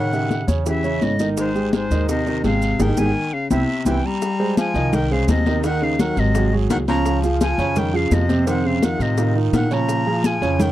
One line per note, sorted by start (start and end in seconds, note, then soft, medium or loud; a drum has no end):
0.00 0.42 A2 medium
0.00 0.45 D#3 medium
0.00 0.45 F#5 medium
0.12 0.42 C#3 medium
0.12 0.42 G4 medium
0.12 0.42 E5 medium
0.12 high bongo soft
0.12 high conga soft
0.12 maracas soft
0.30 high bongo medium
0.30 high conga medium
0.30 short guiro medium
0.30 maracas soft
0.47 0.98 E2 medium
0.47 0.62 C#3 medium
0.47 0.63 C#4 medium
0.47 0.63 C#5 medium
0.47 high bongo soft
0.47 high conga medium
0.47 short guiro medium
0.47 maracas medium
0.66 1.04 C#3 medium
0.66 0.81 E3 medium
0.66 0.81 E4 medium
0.66 0.81 G4 medium
0.66 1.05 E5 medium
0.66 high bongo medium
0.66 high conga soft
0.66 long guiro medium
0.66 maracas medium
0.84 1.13 C#3 medium
0.84 1.13 C#4 medium
0.84 1.13 C#5 medium
0.84 high bongo soft
0.84 high conga soft
0.84 maracas soft
1.01 1.85 G#1 medium
1.01 1.29 A2 medium
1.01 1.29 D#5 medium
1.01 high bongo soft
1.01 low bongo medium
1.01 high conga medium
1.01 short guiro medium
1.01 maracas soft
1.19 1.49 D#3 medium
1.19 1.49 D#4 medium
1.19 1.49 D#5 medium
1.19 high conga medium
1.19 short guiro medium
1.19 maracas medium
1.37 1.71 G#2 medium
1.37 1.71 C5 medium
1.37 high bongo medium
1.37 high conga soft
1.37 long guiro medium
1.37 maracas medium
1.55 1.84 G#3 medium
1.55 1.84 G4 medium
1.55 1.85 G#4 medium
1.55 high bongo soft
1.55 high conga soft
1.55 maracas soft
1.73 2.06 G#2 medium
1.73 2.07 C5 medium
1.73 high bongo soft
1.73 high conga medium
1.73 short guiro medium
1.73 maracas soft
1.91 2.40 D#2 medium
1.91 2.20 D#3 medium
1.91 2.20 D#4 medium
1.91 2.20 D#5 medium
1.91 high bongo soft
1.91 high conga soft
1.91 short guiro medium
1.91 maracas medium
2.09 2.42 C3 medium
2.09 2.43 D#5 medium
2.09 high bongo medium
2.09 high conga soft
2.09 long guiro medium
2.09 maracas medium
2.26 2.41 D#3 medium
2.26 2.41 D#4 medium
2.26 2.41 D#5 medium
2.26 high bongo soft
2.26 high conga soft
2.26 maracas soft
2.44 2.77 G#1 medium
2.44 2.83 C3 medium
2.44 2.73 G#3 medium
2.44 2.73 G4 medium
2.44 2.74 G#4 medium
2.44 2.83 F5 medium
2.44 high bongo soft
2.44 low bongo medium
2.44 high conga medium
2.44 short guiro medium
2.44 maracas soft
2.62 high conga soft
2.62 short guiro medium
2.62 maracas medium
2.79 2.93 G#1 medium
2.79 2.99 D#3 medium
2.79 2.91 D#4 medium
2.79 2.91 G4 medium
2.79 2.91 G#4 medium
2.79 3.00 G5 medium
2.79 low bongo medium
2.79 high conga medium
2.79 long guiro medium
2.79 maracas medium
2.97 3.10 G#1 medium
2.97 3.35 D#3 medium
2.97 3.09 D#4 medium
2.97 3.09 G4 medium
2.97 3.09 G#4 medium
2.97 3.35 G#5 medium
2.97 low bongo medium
2.97 high conga medium
2.97 long guiro medium
2.97 maracas medium
3.33 3.50 C#3 medium
3.33 3.51 F5 medium
3.51 3.64 C2 medium
3.51 3.84 C3 medium
3.51 3.62 C4 medium
3.51 3.62 E4 medium
3.51 3.62 G4 medium
3.51 3.84 E5 medium
3.51 low bongo medium
3.51 high conga medium
3.51 long guiro medium
3.51 maracas medium
3.85 3.99 C2 medium
3.85 4.07 E3 medium
3.85 3.98 C4 medium
3.85 3.98 E4 medium
3.85 3.97 G4 medium
3.85 4.08 G5 medium
3.85 low bongo medium
3.85 high conga medium
3.85 long guiro medium
3.85 maracas medium
4.05 4.57 G3 medium
4.05 4.58 A#5 loud
4.22 high bongo medium
4.22 high conga soft
4.22 maracas medium
4.39 4.68 G#3 medium
4.39 4.69 G#4 medium
4.39 4.69 C5 medium
4.39 high bongo soft
4.39 high conga soft
4.57 4.95 F3 medium
4.57 4.96 G#5 loud
4.57 high bongo medium
4.57 high conga medium
4.57 short guiro medium
4.57 maracas medium
4.74 5.24 C2 medium
4.74 5.04 D#3 medium
4.74 5.04 D#4 medium
4.74 5.04 D#5 medium
4.74 high conga soft
4.74 short guiro medium
4.74 maracas soft
4.93 5.14 D#3 medium
4.93 5.14 G5 medium
4.93 high bongo medium
4.93 high conga soft
4.93 low conga medium
4.93 long guiro medium
4.93 maracas medium
5.11 5.29 C#3 medium
5.11 5.40 G#3 medium
5.11 5.40 G#4 medium
5.11 5.40 C5 medium
5.11 5.29 F5 medium
5.11 high bongo soft
5.11 high conga soft
5.27 6.11 D#2 medium
5.27 5.62 C3 medium
5.27 5.62 D#5 loud
5.27 high bongo medium
5.27 low bongo medium
5.27 high conga medium
5.27 short guiro medium
5.27 maracas medium
5.46 5.61 D#3 medium
5.46 5.61 D#4 medium
5.46 5.61 D#5 medium
5.46 high bongo soft
5.46 high conga medium
5.46 short guiro medium
5.46 maracas soft
5.64 5.93 D#3 medium
5.64 5.84 D#3 medium
5.64 5.94 D#4 medium
5.64 5.94 D#5 medium
5.64 5.85 F#5 loud
5.64 high bongo medium
5.64 long guiro medium
5.64 maracas medium
5.82 6.02 C#3 medium
5.82 6.02 F5 medium
5.82 high bongo soft
5.82 high conga soft
5.99 6.19 D#3 medium
5.99 6.28 F#3 medium
5.99 6.28 F#4 medium
5.99 6.29 A#4 medium
5.99 6.21 F#5 loud
5.99 high bongo medium
5.99 high conga medium
5.99 short guiro medium
5.99 maracas medium
6.16 6.66 G#1 medium
6.16 6.53 C3 medium
6.16 6.54 D#5 loud
6.16 high conga soft
6.16 short guiro medium
6.16 maracas soft
6.35 6.49 F#3 medium
6.35 6.49 F#4 medium
6.35 6.50 G#4 medium
6.35 high bongo medium
6.35 high conga soft
6.35 long guiro medium
6.35 maracas medium
6.53 6.82 F#3 medium
6.53 6.82 F#4 medium
6.53 6.82 G#4 medium
6.53 high bongo soft
6.53 high conga soft
6.69 7.53 C#2 medium
6.69 6.78 D#3 medium
6.69 6.78 F#5 loud
6.69 high bongo medium
6.69 low bongo medium
6.69 high conga medium
6.69 short guiro medium
6.69 maracas medium
6.88 7.17 C#3 medium
6.88 7.38 F3 medium
6.88 7.17 C#4 medium
6.88 7.17 C#5 medium
6.88 7.18 A#5 loud
6.88 high bongo soft
6.88 high conga medium
6.88 short guiro medium
6.88 maracas soft
7.05 high bongo medium
7.05 high conga soft
7.05 long guiro medium
7.05 maracas medium
7.23 7.52 F3 medium
7.23 7.52 F4 medium
7.23 7.53 G#4 medium
7.23 high bongo soft
7.23 high conga soft
7.23 maracas medium
7.41 7.78 F3 medium
7.41 7.80 G#5 loud
7.41 high bongo medium
7.41 high conga medium
7.41 short guiro medium
7.41 maracas medium
7.58 8.08 F2 medium
7.58 7.88 C#3 medium
7.58 7.88 C#4 medium
7.58 7.88 C#5 medium
7.58 high conga soft
7.58 short guiro medium
7.58 maracas soft
7.76 7.96 D#3 medium
7.76 7.98 G5 medium
7.76 high bongo medium
7.76 high conga soft
7.76 low conga medium
7.76 long guiro medium
7.76 maracas medium
7.93 8.13 C#3 medium
7.93 8.23 F3 medium
7.93 8.23 F4 medium
7.93 8.23 G#4 medium
7.93 8.15 F5 medium
7.93 high bongo soft
7.93 high conga soft
8.11 8.94 F2 medium
8.11 8.46 C3 medium
8.11 8.48 D#5 medium
8.11 high bongo medium
8.11 low bongo medium
8.11 high conga medium
8.11 short guiro medium
8.11 maracas medium
8.29 8.44 C3 medium
8.29 8.44 C4 medium
8.29 8.44 C5 medium
8.29 high bongo soft
8.29 high conga medium
8.29 short guiro medium
8.29 maracas soft
8.46 8.76 C3 medium
8.46 8.66 D#3 medium
8.46 8.76 C4 medium
8.46 8.76 C5 medium
8.46 8.68 F#5 medium
8.46 high bongo medium
8.46 long guiro medium
8.46 maracas medium
8.65 8.84 C#3 medium
8.65 8.86 F5 medium
8.65 high bongo soft
8.65 high conga soft
8.82 9.11 D#3 medium
8.82 9.02 D#3 medium
8.82 9.12 D#4 medium
8.82 9.12 F4 medium
8.82 9.04 F#5 loud
8.82 high bongo medium
8.82 high conga medium
8.82 short guiro medium
8.82 maracas medium
8.99 9.49 A2 medium
8.99 9.36 C3 medium
8.99 9.37 D#5 medium
8.99 high conga soft
8.99 short guiro medium
8.99 maracas soft
9.18 9.32 D#3 medium
9.18 9.33 D#4 medium
9.18 9.33 F4 medium
9.18 high bongo medium
9.18 high conga soft
9.18 long guiro medium
9.18 maracas medium
9.35 9.65 D#3 medium
9.35 9.65 D#4 medium
9.35 9.65 F4 medium
9.35 high bongo soft
9.35 high conga soft
9.53 10.36 A#2 medium
9.53 9.73 D#3 medium
9.53 9.75 F#5 medium
9.53 high bongo medium
9.53 low bongo medium
9.53 high conga medium
9.53 short guiro medium
9.53 maracas medium
9.71 10.00 C#3 medium
9.71 10.25 F3 medium
9.71 10.00 C#4 medium
9.71 10.00 C#5 medium
9.71 10.27 A#5 medium
9.71 high bongo soft
9.71 short guiro medium
9.71 maracas soft
9.89 high bongo medium
9.89 high conga soft
9.89 long guiro medium
9.89 maracas medium
10.06 10.36 F3 medium
10.06 10.36 F4 medium
10.06 10.36 G#4 medium
10.06 high bongo soft
10.06 high conga soft
10.24 10.60 F3 medium
10.24 10.63 G#5 loud
10.24 high bongo medium
10.24 high conga medium
10.24 short guiro medium
10.24 maracas medium
10.42 10.72 F2 medium
10.42 10.71 C#3 medium
10.42 10.71 C#4 medium
10.42 10.71 C#5 medium
10.42 high conga soft
10.42 short guiro medium
10.42 maracas soft
10.59 10.72 D#3 medium
10.59 10.72 G5 medium
10.59 high bongo medium
10.59 high conga soft
10.59 low conga medium
10.59 long guiro medium
10.59 maracas medium